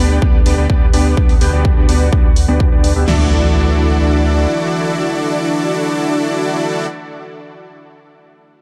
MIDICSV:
0, 0, Header, 1, 6, 480
1, 0, Start_track
1, 0, Key_signature, 2, "major"
1, 0, Tempo, 476190
1, 1182, Time_signature, 4, 2, 24, 8
1, 8687, End_track
2, 0, Start_track
2, 0, Title_t, "Supersaw synth"
2, 0, Program_c, 0, 81
2, 0, Note_on_c, 0, 59, 72
2, 0, Note_on_c, 0, 62, 68
2, 0, Note_on_c, 0, 67, 68
2, 0, Note_on_c, 0, 71, 67
2, 0, Note_on_c, 0, 74, 84
2, 186, Note_off_c, 0, 59, 0
2, 186, Note_off_c, 0, 62, 0
2, 186, Note_off_c, 0, 67, 0
2, 186, Note_off_c, 0, 71, 0
2, 186, Note_off_c, 0, 74, 0
2, 222, Note_on_c, 0, 59, 83
2, 222, Note_on_c, 0, 62, 83
2, 222, Note_on_c, 0, 71, 83
2, 387, Note_off_c, 0, 59, 0
2, 387, Note_off_c, 0, 62, 0
2, 387, Note_off_c, 0, 71, 0
2, 462, Note_on_c, 0, 59, 78
2, 462, Note_on_c, 0, 62, 74
2, 462, Note_on_c, 0, 67, 74
2, 462, Note_on_c, 0, 74, 91
2, 463, Note_on_c, 0, 71, 75
2, 553, Note_off_c, 0, 59, 0
2, 553, Note_off_c, 0, 62, 0
2, 553, Note_off_c, 0, 67, 0
2, 554, Note_off_c, 0, 71, 0
2, 554, Note_off_c, 0, 74, 0
2, 582, Note_on_c, 0, 59, 71
2, 582, Note_on_c, 0, 62, 65
2, 582, Note_on_c, 0, 67, 63
2, 582, Note_on_c, 0, 71, 65
2, 582, Note_on_c, 0, 74, 81
2, 673, Note_off_c, 0, 59, 0
2, 673, Note_off_c, 0, 62, 0
2, 673, Note_off_c, 0, 67, 0
2, 673, Note_off_c, 0, 71, 0
2, 673, Note_off_c, 0, 74, 0
2, 702, Note_on_c, 0, 59, 87
2, 702, Note_on_c, 0, 62, 80
2, 702, Note_on_c, 0, 67, 83
2, 702, Note_on_c, 0, 71, 79
2, 702, Note_on_c, 0, 74, 100
2, 866, Note_off_c, 0, 67, 0
2, 867, Note_off_c, 0, 59, 0
2, 867, Note_off_c, 0, 62, 0
2, 867, Note_off_c, 0, 71, 0
2, 867, Note_off_c, 0, 74, 0
2, 942, Note_on_c, 0, 59, 84
2, 942, Note_on_c, 0, 62, 79
2, 942, Note_on_c, 0, 67, 77
2, 942, Note_on_c, 0, 71, 75
2, 942, Note_on_c, 0, 74, 93
2, 1153, Note_off_c, 0, 59, 0
2, 1153, Note_off_c, 0, 62, 0
2, 1153, Note_off_c, 0, 67, 0
2, 1153, Note_off_c, 0, 71, 0
2, 1153, Note_off_c, 0, 74, 0
2, 1181, Note_on_c, 0, 67, 76
2, 1181, Note_on_c, 0, 71, 76
2, 1182, Note_on_c, 0, 59, 86
2, 1182, Note_on_c, 0, 62, 76
2, 1182, Note_on_c, 0, 74, 87
2, 1346, Note_off_c, 0, 59, 0
2, 1346, Note_off_c, 0, 62, 0
2, 1346, Note_off_c, 0, 67, 0
2, 1346, Note_off_c, 0, 71, 0
2, 1347, Note_off_c, 0, 74, 0
2, 1421, Note_on_c, 0, 67, 73
2, 1422, Note_on_c, 0, 59, 85
2, 1422, Note_on_c, 0, 62, 76
2, 1422, Note_on_c, 0, 71, 77
2, 1422, Note_on_c, 0, 79, 93
2, 1524, Note_off_c, 0, 59, 0
2, 1524, Note_off_c, 0, 62, 0
2, 1524, Note_off_c, 0, 67, 0
2, 1524, Note_off_c, 0, 71, 0
2, 1524, Note_off_c, 0, 79, 0
2, 1542, Note_on_c, 0, 59, 80
2, 1542, Note_on_c, 0, 62, 72
2, 1542, Note_on_c, 0, 67, 70
2, 1542, Note_on_c, 0, 71, 72
2, 1542, Note_on_c, 0, 74, 86
2, 1753, Note_off_c, 0, 59, 0
2, 1753, Note_off_c, 0, 62, 0
2, 1753, Note_off_c, 0, 67, 0
2, 1753, Note_off_c, 0, 71, 0
2, 1753, Note_off_c, 0, 74, 0
2, 1782, Note_on_c, 0, 59, 70
2, 1782, Note_on_c, 0, 62, 68
2, 1782, Note_on_c, 0, 67, 65
2, 1782, Note_on_c, 0, 71, 62
2, 1782, Note_on_c, 0, 74, 78
2, 1884, Note_off_c, 0, 59, 0
2, 1884, Note_off_c, 0, 62, 0
2, 1884, Note_off_c, 0, 67, 0
2, 1884, Note_off_c, 0, 71, 0
2, 1884, Note_off_c, 0, 74, 0
2, 1902, Note_on_c, 0, 59, 78
2, 1903, Note_on_c, 0, 62, 68
2, 1903, Note_on_c, 0, 67, 69
2, 1903, Note_on_c, 0, 71, 67
2, 1903, Note_on_c, 0, 74, 82
2, 2106, Note_off_c, 0, 59, 0
2, 2106, Note_off_c, 0, 62, 0
2, 2106, Note_off_c, 0, 67, 0
2, 2106, Note_off_c, 0, 71, 0
2, 2107, Note_off_c, 0, 74, 0
2, 2142, Note_on_c, 0, 59, 86
2, 2142, Note_on_c, 0, 62, 77
2, 2142, Note_on_c, 0, 67, 78
2, 2142, Note_on_c, 0, 71, 82
2, 2142, Note_on_c, 0, 74, 93
2, 2307, Note_off_c, 0, 59, 0
2, 2307, Note_off_c, 0, 62, 0
2, 2307, Note_off_c, 0, 67, 0
2, 2307, Note_off_c, 0, 71, 0
2, 2307, Note_off_c, 0, 74, 0
2, 2502, Note_on_c, 0, 59, 71
2, 2502, Note_on_c, 0, 62, 68
2, 2502, Note_on_c, 0, 67, 65
2, 2502, Note_on_c, 0, 71, 68
2, 2502, Note_on_c, 0, 74, 81
2, 2713, Note_off_c, 0, 59, 0
2, 2713, Note_off_c, 0, 62, 0
2, 2713, Note_off_c, 0, 67, 0
2, 2713, Note_off_c, 0, 71, 0
2, 2713, Note_off_c, 0, 74, 0
2, 2741, Note_on_c, 0, 59, 89
2, 2741, Note_on_c, 0, 62, 76
2, 2741, Note_on_c, 0, 67, 79
2, 2741, Note_on_c, 0, 74, 95
2, 2742, Note_on_c, 0, 71, 81
2, 2953, Note_off_c, 0, 59, 0
2, 2953, Note_off_c, 0, 62, 0
2, 2953, Note_off_c, 0, 67, 0
2, 2953, Note_off_c, 0, 71, 0
2, 2953, Note_off_c, 0, 74, 0
2, 2981, Note_on_c, 0, 59, 89
2, 2981, Note_on_c, 0, 62, 78
2, 2981, Note_on_c, 0, 67, 82
2, 2981, Note_on_c, 0, 71, 80
2, 2982, Note_on_c, 0, 76, 93
2, 3073, Note_off_c, 0, 59, 0
2, 3073, Note_off_c, 0, 62, 0
2, 3073, Note_off_c, 0, 67, 0
2, 3073, Note_off_c, 0, 71, 0
2, 3073, Note_off_c, 0, 76, 0
2, 3101, Note_on_c, 0, 66, 75
2, 3101, Note_on_c, 0, 69, 74
2, 3101, Note_on_c, 0, 74, 92
2, 3102, Note_on_c, 0, 62, 81
2, 3102, Note_on_c, 0, 64, 73
2, 6916, Note_off_c, 0, 62, 0
2, 6916, Note_off_c, 0, 64, 0
2, 6916, Note_off_c, 0, 66, 0
2, 6916, Note_off_c, 0, 69, 0
2, 6916, Note_off_c, 0, 74, 0
2, 8687, End_track
3, 0, Start_track
3, 0, Title_t, "Analog synth pad"
3, 0, Program_c, 1, 89
3, 0, Note_on_c, 1, 50, 77
3, 0, Note_on_c, 1, 59, 66
3, 0, Note_on_c, 1, 67, 81
3, 1162, Note_off_c, 1, 67, 0
3, 1183, Note_on_c, 1, 66, 82
3, 3063, Note_off_c, 1, 50, 0
3, 3063, Note_off_c, 1, 59, 0
3, 3083, Note_off_c, 1, 66, 0
3, 3102, Note_on_c, 1, 52, 72
3, 3102, Note_on_c, 1, 62, 64
3, 3102, Note_on_c, 1, 66, 79
3, 6916, Note_off_c, 1, 52, 0
3, 6916, Note_off_c, 1, 62, 0
3, 6916, Note_off_c, 1, 66, 0
3, 8687, End_track
4, 0, Start_track
4, 0, Title_t, "Sub bass"
4, 0, Program_c, 2, 38
4, 0, Note_on_c, 2, 38, 95
4, 198, Note_off_c, 2, 38, 0
4, 222, Note_on_c, 2, 38, 90
4, 438, Note_off_c, 2, 38, 0
4, 462, Note_on_c, 2, 38, 88
4, 558, Note_off_c, 2, 38, 0
4, 582, Note_on_c, 2, 38, 88
4, 678, Note_off_c, 2, 38, 0
4, 702, Note_on_c, 2, 38, 92
4, 918, Note_off_c, 2, 38, 0
4, 943, Note_on_c, 2, 38, 95
4, 1158, Note_off_c, 2, 38, 0
4, 1182, Note_on_c, 2, 38, 86
4, 1398, Note_off_c, 2, 38, 0
4, 1423, Note_on_c, 2, 38, 88
4, 1518, Note_off_c, 2, 38, 0
4, 1542, Note_on_c, 2, 38, 92
4, 1758, Note_off_c, 2, 38, 0
4, 1782, Note_on_c, 2, 38, 92
4, 1878, Note_off_c, 2, 38, 0
4, 1902, Note_on_c, 2, 38, 98
4, 2118, Note_off_c, 2, 38, 0
4, 2142, Note_on_c, 2, 38, 90
4, 2478, Note_off_c, 2, 38, 0
4, 2502, Note_on_c, 2, 38, 84
4, 2718, Note_off_c, 2, 38, 0
4, 2742, Note_on_c, 2, 38, 89
4, 2958, Note_off_c, 2, 38, 0
4, 2982, Note_on_c, 2, 38, 88
4, 3078, Note_off_c, 2, 38, 0
4, 3102, Note_on_c, 2, 38, 86
4, 4502, Note_off_c, 2, 38, 0
4, 8687, End_track
5, 0, Start_track
5, 0, Title_t, "Impact"
5, 0, Program_c, 3, 103
5, 3102, Note_on_c, 3, 60, 60
5, 6957, Note_off_c, 3, 60, 0
5, 8687, End_track
6, 0, Start_track
6, 0, Title_t, "Drums"
6, 222, Note_on_c, 9, 36, 120
6, 323, Note_off_c, 9, 36, 0
6, 463, Note_on_c, 9, 46, 102
6, 563, Note_off_c, 9, 46, 0
6, 702, Note_on_c, 9, 36, 110
6, 803, Note_off_c, 9, 36, 0
6, 943, Note_on_c, 9, 46, 98
6, 1044, Note_off_c, 9, 46, 0
6, 1182, Note_on_c, 9, 36, 108
6, 1283, Note_off_c, 9, 36, 0
6, 1303, Note_on_c, 9, 46, 54
6, 1404, Note_off_c, 9, 46, 0
6, 1422, Note_on_c, 9, 46, 100
6, 1523, Note_off_c, 9, 46, 0
6, 1662, Note_on_c, 9, 36, 113
6, 1763, Note_off_c, 9, 36, 0
6, 1903, Note_on_c, 9, 46, 98
6, 2003, Note_off_c, 9, 46, 0
6, 2142, Note_on_c, 9, 36, 115
6, 2243, Note_off_c, 9, 36, 0
6, 2382, Note_on_c, 9, 46, 100
6, 2483, Note_off_c, 9, 46, 0
6, 2622, Note_on_c, 9, 36, 109
6, 2723, Note_off_c, 9, 36, 0
6, 2862, Note_on_c, 9, 46, 96
6, 2963, Note_off_c, 9, 46, 0
6, 3102, Note_on_c, 9, 38, 91
6, 3102, Note_on_c, 9, 49, 79
6, 3203, Note_off_c, 9, 38, 0
6, 3203, Note_off_c, 9, 49, 0
6, 8687, End_track
0, 0, End_of_file